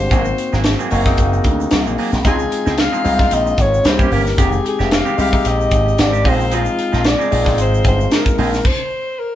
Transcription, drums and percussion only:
0.11 kick, closed hi-hat, shaker
0.25 shaker
0.38 closed hi-hat
0.53 snare, shaker
0.64 snare, closed hi-hat, shaker
0.80 shaker
0.91 open hi-hat, shaker
1.05 kick, snare, shaker
1.18 kick, closed hi-hat, shaker
1.33 shaker
1.44 kick, closed hi-hat, shaker
1.61 shaker
1.71 snare, closed hi-hat, shaker
1.87 shaker
1.98 open hi-hat
2.13 snare, shaker
2.25 kick, closed hi-hat, shaker
2.39 shaker
2.52 closed hi-hat
2.66 snare, shaker
2.78 snare, closed hi-hat, shaker
2.94 shaker
3.04 open hi-hat, shaker
3.19 kick, snare, shaker
3.31 closed hi-hat, shaker
3.47 shaker
3.58 kick, closed hi-hat, shaker
3.74 shaker
3.84 snare, closed hi-hat, shaker
3.99 kick, shaker
4.12 open hi-hat
4.26 snare, shaker
4.38 kick, closed hi-hat, shaker
4.52 shaker
4.66 closed hi-hat
4.79 snare, shaker
4.91 snare, closed hi-hat, shaker
5.06 shaker
5.18 open hi-hat, shaker
5.33 kick, shaker
5.45 closed hi-hat, shaker
5.61 shaker
5.71 kick, closed hi-hat, shaker
5.88 shaker
5.98 snare, closed hi-hat, shaker
6.14 shaker
6.25 kick, open hi-hat
6.40 shaker
6.52 closed hi-hat, shaker
6.65 shaker
6.79 closed hi-hat
6.93 snare, shaker
7.04 snare, closed hi-hat, shaker
7.21 shaker
7.32 open hi-hat, shaker
7.46 kick, snare, shaker
7.58 closed hi-hat, shaker
7.74 shaker
7.84 kick, closed hi-hat, shaker
8.00 shaker
8.11 snare, closed hi-hat, shaker
8.26 kick, shaker
8.38 open hi-hat
8.53 snare, shaker
8.65 kick, crash

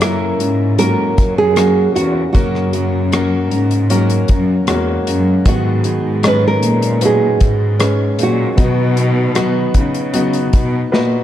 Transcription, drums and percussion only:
0.01 cross-stick, closed hi-hat
0.40 closed hi-hat
0.79 closed hi-hat
1.18 kick, closed hi-hat
1.56 cross-stick, closed hi-hat
1.96 closed hi-hat
2.35 kick, closed hi-hat
2.55 cross-stick
2.73 closed hi-hat
3.12 cross-stick, closed hi-hat
3.51 closed hi-hat
3.71 closed hi-hat
3.90 closed hi-hat
4.10 closed hi-hat
4.28 kick, closed hi-hat
4.67 cross-stick, closed hi-hat
5.07 closed hi-hat
5.46 kick, closed hi-hat
5.84 closed hi-hat
6.23 cross-stick, closed hi-hat
6.63 closed hi-hat
6.83 closed hi-hat
7.01 closed hi-hat
7.40 kick, closed hi-hat
7.80 cross-stick, closed hi-hat
8.19 closed hi-hat
8.58 kick, closed hi-hat
8.97 closed hi-hat
9.35 cross-stick, closed hi-hat
9.74 kick, closed hi-hat
9.95 closed hi-hat
10.14 closed hi-hat
10.33 closed hi-hat
10.53 kick, closed hi-hat
10.94 snare

